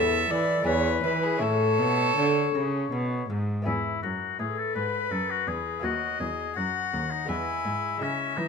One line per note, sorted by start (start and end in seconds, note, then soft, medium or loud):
0.00 0.27 E2 medium
0.00 0.29 E2 medium
0.00 0.61 C#4 medium
0.00 0.62 E4 medium
0.00 0.64 A4 medium
0.00 0.65 A4 medium
0.00 0.32 E5 medium
0.30 0.66 E3 medium
0.30 0.63 E3 medium
0.30 0.66 D5 medium
0.62 1.37 D4 medium
0.62 1.38 E4 soft
0.62 1.38 G#4 medium
0.66 1.00 E2 medium
0.66 1.03 E2 medium
0.66 1.40 B4 medium
0.66 1.03 C#5 medium
1.04 1.43 E3 medium
1.04 1.38 E3 medium
1.04 1.25 B4 medium
1.24 1.43 G#4 medium
1.37 3.60 C#4 medium
1.37 3.61 E4 soft
1.37 3.62 A4 soft
1.37 3.26 C#5 medium
1.41 1.80 A2 medium
1.41 1.76 A2 medium
1.41 2.92 A4 medium
1.79 2.16 B2 medium
1.79 2.13 B2 medium
2.17 2.54 D3 medium
2.17 2.51 D3 medium
2.55 2.91 C#3 medium
2.55 2.89 C#3 medium
2.92 3.29 B2 medium
2.92 3.26 B2 medium
3.30 3.66 G#2 medium
3.30 3.63 G#2 medium
3.62 4.00 B3 soft
3.62 5.78 E4 soft
3.62 5.79 G#4 soft
3.66 3.99 E2 soft
3.66 4.01 E2 medium
3.66 4.00 E4 medium
4.03 4.37 F#2 medium
4.03 4.36 F#2 soft
4.03 4.39 F#4 medium
4.39 4.73 A2 medium
4.39 4.72 A2 soft
4.39 4.57 G#4 medium
4.39 5.85 B4 medium
4.58 4.75 A4 medium
4.75 5.09 G#2 medium
4.75 5.08 G#2 soft
4.75 5.13 B4 medium
5.11 5.45 F#2 medium
5.11 5.44 F#2 soft
5.11 5.32 A4 medium
5.30 5.49 F#4 medium
5.47 5.81 E2 soft
5.47 5.80 E2 soft
5.47 5.83 G#4 medium
5.79 6.17 A3 soft
5.79 7.24 B3 soft
5.79 7.25 F#4 soft
5.79 6.56 D#5 medium
5.84 6.18 D#2 medium
5.84 6.17 D#2 soft
5.84 6.20 F#4 medium
6.20 6.54 E2 medium
6.20 6.54 E2 soft
6.20 6.56 G#4 medium
6.56 6.91 F#2 medium
6.56 6.90 F#2 soft
6.56 7.13 F#4 medium
6.56 7.30 F#5 medium
6.93 7.26 D#2 soft
6.93 7.27 D#2 medium
7.11 7.28 D#4 medium
7.25 7.63 E2 medium
7.25 7.96 G#3 soft
7.25 7.98 B3 soft
7.25 8.03 E4 medium
7.25 7.99 G#4 soft
7.25 8.01 G#5 medium
7.30 7.62 E2 soft
7.65 7.99 G#2 medium
7.65 7.98 G#2 soft
7.97 8.35 C#3 medium
7.97 8.48 G#3 soft
7.97 8.48 E4 soft
7.97 8.48 G#4 soft
8.02 8.34 C#3 soft
8.02 8.38 C#4 medium
8.02 8.48 E5 medium
8.37 8.48 E3 medium
8.37 8.48 E3 soft
8.37 8.48 D#4 medium